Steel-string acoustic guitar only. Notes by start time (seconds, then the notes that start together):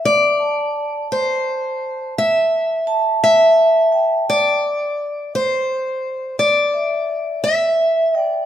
0.05 D5
1.12 C5
2.18 E5
3.24 E5
4.30 D5
5.35 C5
6.39 D5
7.44 E5
8.21 D5